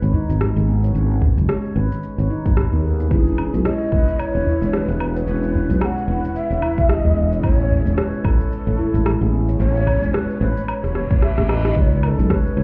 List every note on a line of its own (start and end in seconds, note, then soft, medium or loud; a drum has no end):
0.02 0.11 G#1 loud
0.02 0.13 C#5 medium
0.02 shaker soft
0.13 0.29 D#4 loud
0.13 udu medium
0.29 0.49 G#1 medium
0.29 0.36 G#3 medium
0.29 shaker medium
0.41 cross-stick medium
0.41 shaker medium
0.56 0.91 G#1 loud
0.56 0.68 G#4 medium
0.56 shaker soft
0.68 0.83 B3 medium
0.84 0.90 C#5 medium
0.84 shaker medium
0.95 1.32 G#1 medium
0.95 1.36 C#4 medium
0.95 shaker medium
1.11 shaker soft
1.22 kick medium
1.22 udu medium
1.37 1.46 F#1 medium
1.37 1.44 G#3 medium
1.37 shaker medium
1.49 1.75 C#5 medium
1.49 cross-stick medium
1.49 shaker medium
1.65 shaker soft
1.76 1.88 G#1 medium
1.76 1.91 B4 medium
1.92 shaker medium
2.03 shaker medium
2.18 2.27 G#1 medium
2.18 2.29 C#5 medium
2.18 shaker soft
2.30 2.44 D#4 loud
2.46 2.66 G#1 medium
2.46 2.52 B4 medium
2.46 kick loud
2.46 shaker medium
2.57 cross-stick medium
2.57 shaker medium
2.73 3.07 D#2 medium
2.73 2.83 B3 medium
2.73 udu medium
2.73 shaker soft
2.84 2.99 G#4 medium
3.00 3.11 D#4 medium
3.00 shaker medium
3.11 3.48 E1 medium
3.11 3.52 C#4 medium
3.11 11.77 E4 medium
3.11 3.61 G#4 loud
3.11 11.77 B4 medium
3.11 kick loud
3.11 shaker medium
3.27 shaker soft
3.38 udu medium
3.38 low woodblock medium
3.54 3.63 B1 medium
3.54 3.60 G#3 medium
3.54 shaker medium
3.65 3.91 C#5 medium
3.65 4.21 D#5 loud
3.65 cross-stick medium
3.65 shaker medium
3.81 shaker soft
3.92 4.04 E1 medium
3.92 4.07 B4 medium
3.92 kick loud
4.08 shaker medium
4.19 4.73 C#5 loud
4.19 low woodblock medium
4.19 shaker medium
4.35 4.44 E1 medium
4.35 4.45 C#5 medium
4.35 shaker soft
4.46 4.61 E4 loud
4.46 udu medium
4.62 4.82 E1 medium
4.62 4.68 G#3 medium
4.62 shaker medium
4.73 5.16 B4 loud
4.73 4.78 C#5 medium
4.73 cross-stick medium
4.73 shaker medium
4.88 5.23 E1 loud
4.88 5.00 G#4 medium
4.88 shaker soft
5.00 5.15 B3 medium
5.00 low woodblock medium
5.16 5.23 C#5 medium
5.16 shaker medium
5.27 5.64 E1 medium
5.27 5.69 C#4 medium
5.27 5.83 B4 loud
5.27 shaker medium
5.43 shaker soft
5.55 udu medium
5.69 5.78 B1 medium
5.69 5.77 G#3 medium
5.69 shaker medium
5.81 6.07 C#5 medium
5.81 6.35 F#5 loud
5.81 5.85 G#5 loud
5.81 cross-stick medium
5.81 low woodblock medium
5.81 shaker medium
5.97 shaker soft
6.08 6.20 E1 loud
6.08 6.23 B4 medium
6.24 shaker medium
6.35 6.89 E5 loud
6.35 shaker medium
6.50 6.60 E1 medium
6.50 6.61 C#5 medium
6.50 shaker soft
6.62 6.77 E4 medium
6.62 low woodblock medium
6.78 6.98 E1 loud
6.78 6.85 G#3 medium
6.78 kick loud
6.78 shaker medium
6.89 7.32 D#5 loud
6.89 6.94 E5 loud
6.89 cross-stick medium
6.89 shaker soft
7.05 7.39 E1 loud
7.05 7.16 G#4 medium
7.05 udu medium
7.05 shaker soft
7.16 7.31 B3 medium
7.32 7.39 C#5 medium
7.32 shaker medium
7.43 7.80 A1 loud
7.43 7.85 C#4 medium
7.43 7.54 C5 loud
7.43 kick loud
7.43 low woodblock medium
7.43 shaker soft
7.54 7.99 C#5 loud
7.59 shaker soft
7.71 udu medium
7.86 7.95 E1 medium
7.86 7.93 G#3 medium
7.86 shaker medium
7.98 8.24 B4 loud
7.98 8.23 C#5 medium
7.98 cross-stick loud
7.98 shaker medium
8.14 shaker soft
8.24 8.37 A1 loud
8.24 9.29 A4 medium
8.24 8.40 B4 medium
8.24 kick loud
8.24 low woodblock medium
8.41 shaker medium
8.52 shaker medium
8.67 8.76 A1 loud
8.67 8.78 C#5 medium
8.67 shaker soft
8.79 8.94 E4 medium
8.79 udu medium
8.94 9.14 A1 medium
8.94 9.01 G#3 medium
8.94 shaker medium
9.06 cross-stick medium
9.06 low woodblock medium
9.06 shaker soft
9.21 9.55 A1 loud
9.21 9.32 G#4 medium
9.21 shaker soft
9.33 9.48 B3 medium
9.49 9.55 C#5 medium
9.49 shaker medium
9.60 9.97 A1 medium
9.60 10.01 C#4 medium
9.60 10.15 C#5 loud
9.60 shaker medium
9.76 shaker soft
9.86 kick medium
9.86 udu medium
9.86 low woodblock medium
10.02 10.11 E1 medium
10.02 10.09 G#3 medium
10.02 shaker medium
10.14 10.41 B4 loud
10.14 10.40 C#5 medium
10.14 cross-stick medium
10.14 shaker soft
10.30 shaker soft
10.41 10.53 A1 loud
10.41 10.56 B4 loud
10.41 11.18 C#5 loud
10.57 shaker medium
10.68 reverse cymbal medium
10.68 low woodblock medium
10.68 shaker medium
10.84 11.03 E1 medium
10.84 10.94 C#5 medium
10.84 cross-stick soft
10.84 shaker soft
10.95 11.09 B3 medium
10.95 cross-stick medium
11.10 11.19 A1 medium
11.10 11.21 B4 medium
11.10 kick loud
11.10 shaker medium
11.22 11.51 E5 medium
11.22 cross-stick medium
11.22 shaker soft
11.38 11.72 A1 loud
11.38 11.44 G#4 medium
11.38 cross-stick medium
11.38 udu medium
11.38 shaker soft
11.49 11.63 B4 medium
11.49 11.76 D#5 medium
11.49 cross-stick medium
11.49 low woodblock medium
11.65 11.76 D#4 medium
11.65 cross-stick medium
11.65 shaker medium
11.76 12.13 C#2 medium
11.76 12.17 C#4 medium
11.76 11.82 D#5 loud
11.76 kick loud
11.76 impact medium
11.76 shaker medium
11.81 12.03 C#5 loud
11.92 shaker soft
12.03 12.09 B4 medium
12.03 low woodblock medium
12.08 12.32 A4 medium
12.19 12.27 B1 medium
12.19 12.25 G#3 medium
12.19 shaker medium
12.30 12.57 B4 medium
12.30 12.56 C#5 medium
12.30 kick loud
12.30 cross-stick medium
12.30 shaker medium
12.46 shaker soft
12.57 12.64 C#2 loud
12.57 12.64 B4 loud
12.57 12.64 C#5 loud